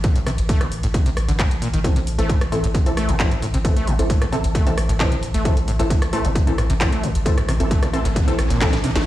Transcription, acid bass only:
0.04 0.08 A2 medium
0.16 0.19 A2 medium
0.27 0.30 C3 loud
0.49 0.62 A3 medium
0.61 0.67 A2 loud
0.83 0.87 A2 medium
0.94 0.98 A2 medium
1.06 1.09 C3 loud
1.28 1.32 D3 medium
1.39 1.46 A2 medium
1.62 1.68 A#2 medium
1.73 1.79 D#3 medium
1.84 1.88 A2 medium
1.96 2.00 C3 loud
2.18 2.31 A3 medium
2.29 2.36 A2 loud
2.52 2.56 A2 medium
2.64 2.67 A2 medium
2.75 2.78 C3 loud
2.97 3.10 A3 medium
3.09 3.15 A2 loud
3.31 3.35 A2 medium
3.42 3.46 A2 medium
3.54 3.58 C3 loud
3.76 3.89 A3 medium
3.87 3.94 A2 loud
4.10 4.14 A2 medium
4.21 4.25 A2 medium
4.32 4.36 C3 loud
4.55 4.68 A3 medium
4.67 4.73 A2 loud
4.89 4.93 A2 medium
5.00 5.04 A2 medium
5.12 5.15 C3 loud
5.34 5.47 A3 medium
5.45 5.52 A2 loud
5.68 5.72 A2 medium
5.79 5.83 A2 medium
5.90 5.94 C3 loud
6.13 6.26 A3 medium
6.25 6.31 A2 loud
6.47 6.51 A2 medium
6.58 6.62 A2 medium
6.70 6.73 C3 loud
6.92 7.05 A3 medium
7.03 7.10 A2 loud
7.26 7.30 A2 medium
7.38 7.41 A2 medium
7.48 7.52 C3 loud
7.71 7.84 A3 medium
7.82 7.89 A2 loud
8.05 8.09 A2 medium
8.16 8.20 A2 medium
8.28 8.31 C3 loud
8.50 8.62 A#2 medium
8.61 8.67 A2 medium
8.73 8.79 A2 medium
8.84 8.90 C3 loud
8.95 9.01 A3 medium

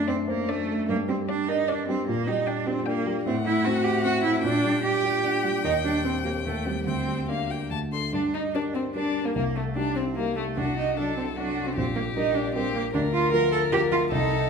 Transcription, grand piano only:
0.00 0.85 F#2 medium
0.00 0.20 A3 soft
0.08 0.40 D4 soft
0.28 0.60 C5 soft
0.48 0.80 D4 soft
0.69 0.88 A3 soft
0.89 2.05 G2 medium
1.09 1.41 G3 soft
1.29 1.61 D4 soft
1.49 1.81 A#4 soft
1.69 2.01 D4 soft
1.89 2.08 G3 soft
2.08 3.23 A#2 medium
2.28 2.59 G3 soft
2.47 2.79 D4 soft
2.66 2.98 G4 soft
2.86 3.18 D4 soft
3.06 3.26 G3 soft
3.26 4.40 A2 medium
3.46 3.77 A3 soft
3.66 3.97 C4 medium
3.85 4.16 F#4 medium
4.05 4.36 C4 soft
4.24 4.44 A3 medium
4.43 5.60 A#2 medium
4.64 4.96 G3 soft
4.85 5.16 D4 soft
5.05 5.36 G4 soft
5.24 5.56 D4 soft
5.44 5.64 G3 soft
5.64 6.42 D#2 medium
5.84 6.16 G3 soft
6.04 6.37 C4 soft
6.24 6.45 G4 soft
6.45 6.85 D#2 soft
6.66 6.84 C4 soft
6.66 6.85 G4 soft
6.87 7.69 D2 soft
7.07 7.41 G3 soft
7.28 7.62 D4 soft
7.49 7.71 G4 soft
7.71 8.12 D2 soft
7.92 8.11 D4 soft
7.92 8.11 A4 soft
8.13 8.53 G2 soft
8.54 8.90 G3 soft
8.54 8.91 D4 soft
8.54 8.91 A#4 soft
8.95 9.31 G3 soft
8.95 9.31 D4 soft
8.95 9.32 A#4 soft
9.35 9.75 C2 soft
9.76 10.13 G3 soft
9.76 10.13 D#4 soft
9.76 10.13 G4 soft
10.17 10.54 G3 soft
10.17 10.54 D#4 soft
10.17 10.54 G4 soft
10.58 10.96 C2 soft
10.98 11.33 F#3 soft
10.98 11.33 D4 soft
10.98 11.34 A4 soft
11.38 11.73 F#3 soft
11.38 11.73 D4 soft
11.38 11.73 A4 soft
11.77 12.15 A#1 soft
12.16 12.51 G3 soft
12.16 12.51 D4 soft
12.16 12.52 A#4 soft
12.55 12.90 G3 soft
12.55 12.90 D4 soft
12.55 12.91 A#4 soft
12.94 13.32 D2 medium
13.33 13.68 F3 soft
13.33 13.68 F4 soft
13.33 13.69 A#4 medium
13.72 14.07 F3 soft
13.72 14.07 F4 soft
13.72 14.08 A#4 medium
14.11 14.50 C2 medium

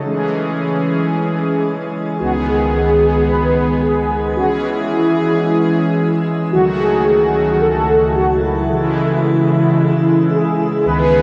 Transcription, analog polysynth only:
2.20 2.32 F#4 loud
2.47 3.24 G#4 loud
3.28 3.53 B4 loud
3.55 3.67 B4 loud
3.82 4.38 G#4 loud
4.36 4.49 F#4 loud
4.63 6.21 E4 loud
6.53 6.65 F#4 loud
6.79 7.56 G#4 loud
7.60 8.11 A4 loud
8.14 8.40 F#4 loud
8.41 10.27 E4 loud
10.31 10.86 G#4 loud
10.85 11.22 B4 loud

